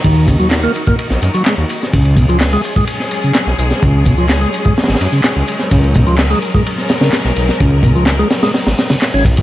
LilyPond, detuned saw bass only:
\new Staff \with { instrumentName = "Detuned saw bass" } { \clef bass \time 4/4 \key des \mixolydian \tempo 4 = 127 ees,4~ ees,16 r4 bes,,16 ges,16 r8 ees,16 r8 | des,4~ des,16 r2 ces,16 ces,16 r16 | des,4~ des,16 r4 aes,,16 ges,16 r8 des,16 r8 | des,4~ des,16 r2 ces,16 ces,16 r16 |
des,4~ des,16 r4 aes,,16 r8. aes,,16 ces,16 des,16 | }